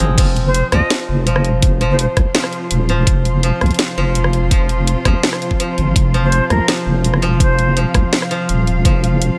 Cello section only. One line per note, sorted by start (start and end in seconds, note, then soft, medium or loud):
0.00 0.16 C3 medium
0.00 0.18 F3 medium
0.00 0.18 F4 medium
0.00 0.18 C5 medium
0.18 9.38 C3 medium
0.49 9.38 F3 medium
0.74 9.38 F4 medium
1.57 7.37 C5 medium
7.35 9.38 F5 medium